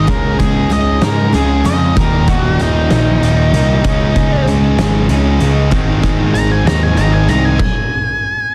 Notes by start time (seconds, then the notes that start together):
Already playing: D#4
0.07 C#2 C#3 G#3 C#4 D#4 A#4, kick, closed hi-hat
0.12 G#4
0.39 C#2 C#3 G#3 G#4, kick, closed hi-hat
0.70 C#2 C#3 G#3 D#5, closed hi-hat
1.01 G#2 C#3 G#3 A#4, snare, closed hi-hat
1.33 C#2 C#3 G#3 C#4 D#4 G#4, closed hi-hat
1.64 F2 C#3 G#3 C#4 D#5, closed hi-hat
1.95 D#1 D#2 A#2 D#3 G3 A#3 D#4 A#4, kick, closed hi-hat
2.28 D#1 F#4, kick, closed hi-hat
2.59 D#1 D#4, closed hi-hat
2.90 A#1, snare, closed hi-hat
3.21 D#1 D#2 A#2 D#3 G3 A#3 D#4, closed hi-hat
3.52 C2 A#2 D#3, closed hi-hat
3.57 D#2
3.83 C#2 C#3 G#3 C#4 D#4, kick, closed hi-hat
3.87 G#4
4.15 C#2, kick, closed hi-hat
4.46 C#2, closed hi-hat
4.78 G#1, snare, closed hi-hat
5.09 C#2 C#3 G#3 C#4 D#4 G#4, closed hi-hat
5.40 C#2 C#3 G#3 C#4, closed hi-hat
5.70 G#1 G#2 D#3 G#3 C4 D#4, kick, closed hi-hat
6.03 G#1, kick, closed hi-hat
6.34 G#1 A#5, closed hi-hat
6.52 G#5
6.65 D#2 A#5, snare, closed hi-hat
6.83 G#5
6.96 G#1 G#2 D#3 G#3 C4 A#5, closed hi-hat
7.00 D#4
7.12 G#5
7.28 C2 G#2 D#3 G#3 A#5, closed hi-hat
7.45 G#5
7.59 G#5, kick, crash